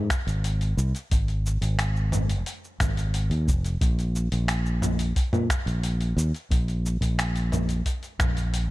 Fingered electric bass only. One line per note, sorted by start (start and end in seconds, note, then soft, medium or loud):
0.27 0.73 G#1 medium
0.77 0.92 C2 loud
1.11 1.57 G#1 medium
1.61 2.41 G#1 medium
2.80 3.29 G#1 medium
3.30 3.49 D#2 medium
3.48 3.75 F1 loud
3.81 4.27 A#1 loud
4.32 5.12 A#1 medium
5.33 5.47 A#2 medium
5.66 6.12 A#1 medium
6.17 6.31 D#2 loud
6.51 6.97 A#1 medium
7.01 7.81 A#1 medium
8.19 8.71 A#1 medium